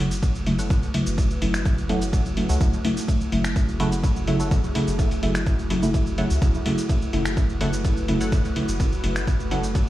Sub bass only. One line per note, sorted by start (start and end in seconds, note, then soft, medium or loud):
0.00 0.89 F#1 loud
1.06 1.37 F#1 loud
1.42 2.44 F#1 loud
2.49 2.58 C#2 loud
2.61 2.78 F#1 loud
3.32 4.70 F#1 loud
4.87 5.18 F#1 loud
5.23 6.25 F#1 loud
6.30 6.39 C#2 loud
6.42 6.60 F#1 loud
7.13 8.51 F#1 loud
8.68 8.99 F#1 loud
9.04 9.89 F#1 loud